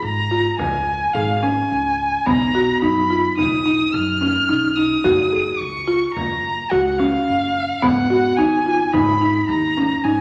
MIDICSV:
0, 0, Header, 1, 5, 480
1, 0, Start_track
1, 0, Tempo, 556586
1, 1953, Time_signature, 5, 2, 24, 8
1, 8803, End_track
2, 0, Start_track
2, 0, Title_t, "Violin"
2, 0, Program_c, 0, 40
2, 21, Note_on_c, 0, 82, 93
2, 502, Note_off_c, 0, 82, 0
2, 507, Note_on_c, 0, 80, 94
2, 979, Note_on_c, 0, 77, 84
2, 992, Note_off_c, 0, 80, 0
2, 1221, Note_off_c, 0, 77, 0
2, 1226, Note_on_c, 0, 80, 86
2, 1944, Note_on_c, 0, 82, 100
2, 1957, Note_off_c, 0, 80, 0
2, 2416, Note_off_c, 0, 82, 0
2, 2422, Note_on_c, 0, 83, 99
2, 2874, Note_off_c, 0, 83, 0
2, 2911, Note_on_c, 0, 87, 93
2, 3389, Note_on_c, 0, 89, 99
2, 3402, Note_off_c, 0, 87, 0
2, 4100, Note_on_c, 0, 87, 88
2, 4113, Note_off_c, 0, 89, 0
2, 4821, Note_on_c, 0, 85, 88
2, 4834, Note_off_c, 0, 87, 0
2, 5289, Note_off_c, 0, 85, 0
2, 5294, Note_on_c, 0, 82, 91
2, 5785, Note_on_c, 0, 78, 78
2, 5798, Note_off_c, 0, 82, 0
2, 6017, Note_on_c, 0, 77, 93
2, 6030, Note_off_c, 0, 78, 0
2, 6748, Note_on_c, 0, 78, 94
2, 6761, Note_off_c, 0, 77, 0
2, 7214, Note_on_c, 0, 80, 99
2, 7227, Note_off_c, 0, 78, 0
2, 7697, Note_on_c, 0, 83, 98
2, 7710, Note_off_c, 0, 80, 0
2, 8177, Note_off_c, 0, 83, 0
2, 8182, Note_on_c, 0, 82, 90
2, 8658, Note_on_c, 0, 80, 97
2, 8671, Note_off_c, 0, 82, 0
2, 8803, Note_off_c, 0, 80, 0
2, 8803, End_track
3, 0, Start_track
3, 0, Title_t, "Marimba"
3, 0, Program_c, 1, 12
3, 0, Note_on_c, 1, 68, 70
3, 107, Note_off_c, 1, 68, 0
3, 270, Note_on_c, 1, 65, 69
3, 590, Note_off_c, 1, 65, 0
3, 991, Note_on_c, 1, 68, 71
3, 1151, Note_off_c, 1, 68, 0
3, 1231, Note_on_c, 1, 61, 62
3, 1551, Note_off_c, 1, 61, 0
3, 1953, Note_on_c, 1, 59, 74
3, 2113, Note_off_c, 1, 59, 0
3, 2198, Note_on_c, 1, 66, 73
3, 2356, Note_off_c, 1, 66, 0
3, 2434, Note_on_c, 1, 63, 79
3, 2594, Note_off_c, 1, 63, 0
3, 2676, Note_on_c, 1, 65, 68
3, 2835, Note_off_c, 1, 65, 0
3, 2912, Note_on_c, 1, 63, 63
3, 3073, Note_off_c, 1, 63, 0
3, 3153, Note_on_c, 1, 63, 69
3, 3473, Note_off_c, 1, 63, 0
3, 3632, Note_on_c, 1, 61, 65
3, 3793, Note_off_c, 1, 61, 0
3, 3874, Note_on_c, 1, 63, 69
3, 4034, Note_off_c, 1, 63, 0
3, 4117, Note_on_c, 1, 63, 64
3, 4276, Note_off_c, 1, 63, 0
3, 4350, Note_on_c, 1, 66, 90
3, 4511, Note_off_c, 1, 66, 0
3, 4593, Note_on_c, 1, 68, 72
3, 4912, Note_off_c, 1, 68, 0
3, 5067, Note_on_c, 1, 65, 75
3, 5389, Note_off_c, 1, 65, 0
3, 5791, Note_on_c, 1, 66, 78
3, 5952, Note_off_c, 1, 66, 0
3, 6034, Note_on_c, 1, 61, 73
3, 6352, Note_off_c, 1, 61, 0
3, 6748, Note_on_c, 1, 59, 86
3, 6909, Note_off_c, 1, 59, 0
3, 6988, Note_on_c, 1, 66, 80
3, 7149, Note_off_c, 1, 66, 0
3, 7232, Note_on_c, 1, 63, 83
3, 7391, Note_off_c, 1, 63, 0
3, 7470, Note_on_c, 1, 65, 66
3, 7630, Note_off_c, 1, 65, 0
3, 7705, Note_on_c, 1, 63, 81
3, 7866, Note_off_c, 1, 63, 0
3, 7946, Note_on_c, 1, 63, 67
3, 8265, Note_off_c, 1, 63, 0
3, 8428, Note_on_c, 1, 61, 64
3, 8587, Note_off_c, 1, 61, 0
3, 8667, Note_on_c, 1, 63, 70
3, 8803, Note_off_c, 1, 63, 0
3, 8803, End_track
4, 0, Start_track
4, 0, Title_t, "Upright bass"
4, 0, Program_c, 2, 32
4, 20, Note_on_c, 2, 32, 88
4, 394, Note_off_c, 2, 32, 0
4, 504, Note_on_c, 2, 37, 84
4, 877, Note_off_c, 2, 37, 0
4, 988, Note_on_c, 2, 32, 98
4, 1360, Note_off_c, 2, 32, 0
4, 1480, Note_on_c, 2, 37, 78
4, 1847, Note_off_c, 2, 37, 0
4, 1960, Note_on_c, 2, 35, 75
4, 2328, Note_off_c, 2, 35, 0
4, 2442, Note_on_c, 2, 42, 93
4, 2809, Note_off_c, 2, 42, 0
4, 2919, Note_on_c, 2, 35, 80
4, 3288, Note_off_c, 2, 35, 0
4, 3396, Note_on_c, 2, 42, 103
4, 3765, Note_off_c, 2, 42, 0
4, 3878, Note_on_c, 2, 35, 83
4, 4247, Note_off_c, 2, 35, 0
4, 4352, Note_on_c, 2, 30, 95
4, 4723, Note_off_c, 2, 30, 0
4, 4838, Note_on_c, 2, 37, 80
4, 5207, Note_off_c, 2, 37, 0
4, 5316, Note_on_c, 2, 30, 82
4, 5685, Note_off_c, 2, 30, 0
4, 5794, Note_on_c, 2, 37, 100
4, 6164, Note_off_c, 2, 37, 0
4, 6274, Note_on_c, 2, 30, 78
4, 6643, Note_off_c, 2, 30, 0
4, 6753, Note_on_c, 2, 32, 80
4, 7122, Note_off_c, 2, 32, 0
4, 7230, Note_on_c, 2, 39, 87
4, 7600, Note_off_c, 2, 39, 0
4, 7709, Note_on_c, 2, 32, 92
4, 8079, Note_off_c, 2, 32, 0
4, 8182, Note_on_c, 2, 39, 100
4, 8554, Note_off_c, 2, 39, 0
4, 8658, Note_on_c, 2, 32, 81
4, 8803, Note_off_c, 2, 32, 0
4, 8803, End_track
5, 0, Start_track
5, 0, Title_t, "Frame drum"
5, 510, Note_on_c, 9, 64, 58
5, 597, Note_off_c, 9, 64, 0
5, 751, Note_on_c, 9, 64, 17
5, 838, Note_off_c, 9, 64, 0
5, 1236, Note_on_c, 9, 64, 42
5, 1322, Note_off_c, 9, 64, 0
5, 1955, Note_on_c, 9, 64, 65
5, 2042, Note_off_c, 9, 64, 0
5, 2919, Note_on_c, 9, 64, 55
5, 3006, Note_off_c, 9, 64, 0
5, 3641, Note_on_c, 9, 64, 42
5, 3727, Note_off_c, 9, 64, 0
5, 4355, Note_on_c, 9, 64, 59
5, 4441, Note_off_c, 9, 64, 0
5, 5316, Note_on_c, 9, 64, 55
5, 5402, Note_off_c, 9, 64, 0
5, 6029, Note_on_c, 9, 64, 52
5, 6116, Note_off_c, 9, 64, 0
5, 6753, Note_on_c, 9, 64, 67
5, 6840, Note_off_c, 9, 64, 0
5, 7707, Note_on_c, 9, 64, 59
5, 7793, Note_off_c, 9, 64, 0
5, 8427, Note_on_c, 9, 64, 43
5, 8514, Note_off_c, 9, 64, 0
5, 8803, End_track
0, 0, End_of_file